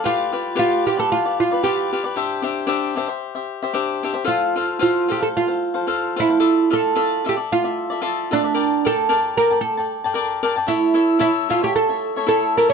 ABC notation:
X:1
M:4/4
L:1/16
Q:"Swing" 1/4=113
K:Gdor
V:1 name="Cavaquinho"
[FG=Bd]2 [FGBd]2 [FGBd]2 [FGBd] [GBd]2 [GBd]2 [GBd] [FGBd]2 [FGBd] [GBd] | [DGce]2 [DGce]2 [DGce]2 [DGce] [Gce]2 [Gce]2 [Gce] [DGce]2 [DGce] [Gce] | [FAcf]2 [FAcf]2 [FAcf]2 [FAcf] [Acf]2 [Acf]2 [Acf] [FAcf]2 [FAcf] [Acf] | [FAde]2 [FAde]2 [FAde]2 [FAde] [Ade]2 [Ade]2 [Ade] [FAde]2 [FAde] [Ade] |
[Bdga]2 [Bdga]2 [Bdga]2 [Bdga] [dga]2 [dga]2 [dga] [Bdga]2 [Bdga] [dga] | [EA^ce]2 [EAce]2 [EAce]2 [EAce] [Ace]2 [Ace]2 [Ace] [EAce]2 [EAce] e |]
V:2 name="Oud"
F4 F2 G A F2 F2 G3 z | z16 | F4 F2 G A F6 E2- | E2 A4 G2 F6 D2- |
D2 A4 B2 A6 z2 | E4 E2 F G A4 A2 B ^c |]